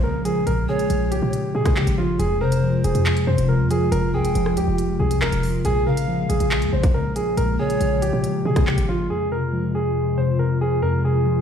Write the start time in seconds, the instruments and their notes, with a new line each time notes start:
Already playing: 808-style bass A#1, synth keys A#2 C#3 F3, analog synth pad C#3 G#3 A#3
0.04 synth keys C#3, grand piano A#4
0.25 synth keys F3, grand piano G#4, closed hi-hat
0.47 808-style bass A#1, synth keys A#2, grand piano A#4, closed hi-hat
0.68 synth keys C#3, grand piano G#4, pan flute C#5
0.79 closed hi-hat
0.90 808-style bass A#1, synth keys F3, closed hi-hat
1.11 808-style bass C2, grand piano G4, closed hi-hat
1.22 808-style bass A#2
1.33 closed hi-hat
1.55 808-style bass A#2, synth keys C#3, grand piano G#4
1.66 kick, cross-stick, closed hi-hat
1.76 808-style bass C#3, synth keys C#3, grand piano G4, clap
1.87 808-style bass G#1, closed hi-hat
1.98 synth keys F3, grand piano F4
2.19 808-style bass F1, synth keys F2, analog synth pad C3 G#3 F4, grand piano G#4, closed hi-hat
2.41 synth keys C3, grand piano A#4, pan flute C5
2.52 closed hi-hat
2.63 synth keys F3
2.84 808-style bass F1, grand piano G#4, closed hi-hat
2.95 808-style bass F2, closed hi-hat
3.06 clap, closed hi-hat
3.17 closed hi-hat
3.27 808-style bass F2, synth keys C3, grand piano C5
3.38 808-style bass F1, closed hi-hat
3.49 synth keys C3, grand piano A#4
3.60 808-style bass F2
3.71 synth keys F3, grand piano G#4, closed hi-hat
3.92 808-style bass F1, synth keys F2, grand piano A#4, closed hi-hat
4.14 808-style bass C2, synth keys C3, grand piano G#4, pan flute G5
4.25 808-style bass F1, closed hi-hat
4.35 808-style bass F1, synth keys F3, closed hi-hat
4.46 cross-stick
4.57 808-style bass F2, grand piano G4, closed hi-hat
4.68 808-style bass F1
4.78 closed hi-hat
4.99 808-style bass C2, synth keys C3, grand piano G#4
5.11 closed hi-hat
5.22 808-style bass E1, synth keys C3, grand piano A#4, clap
5.32 808-style bass E1, closed hi-hat
5.43 synth keys F3, open hi-hat
5.65 808-style bass A#1, synth keys A#2, analog synth pad C#3 G#3 A#3, grand piano G#4, closed hi-hat
5.86 synth keys C#3, grand piano A#4, pan flute F5
5.97 closed hi-hat
6.08 synth keys F3
6.29 808-style bass A#1, grand piano G#4, closed hi-hat
6.40 808-style bass A#1, closed hi-hat
6.51 clap, closed hi-hat
6.62 808-style bass F2, closed hi-hat
6.73 808-style bass A#1, synth keys C#3, grand piano C5
6.83 kick, closed hi-hat
6.94 synth keys C#3, grand piano A#4
7.16 synth keys F3, grand piano G#4, closed hi-hat
7.37 808-style bass A#1, synth keys A#2, grand piano A#4, closed hi-hat
7.59 synth keys C#3, grand piano G#4, pan flute C#5
7.70 closed hi-hat
7.81 808-style bass A#1, synth keys F3, closed hi-hat
8.02 808-style bass C2, grand piano G4, closed hi-hat
8.13 808-style bass A#2
8.24 closed hi-hat
8.45 808-style bass A#2, synth keys C#3, grand piano G#4
8.56 kick, cross-stick, closed hi-hat
8.67 808-style bass C#3, synth keys C#3, grand piano G4, clap
8.78 808-style bass G#1, closed hi-hat
8.89 synth keys F3, grand piano F4
9.10 synth keys F2, analog synth pad C3 G#3 F4, grand piano G#4
9.32 synth keys C3, grand piano A#4
9.53 synth keys F3
9.75 grand piano G#4
10.18 synth keys C3, grand piano C5
10.39 synth keys C3, grand piano A#4
10.61 synth keys F3, grand piano G#4
10.82 synth keys F2, grand piano A#4
11.04 synth keys C3, grand piano G#4
11.26 synth keys F3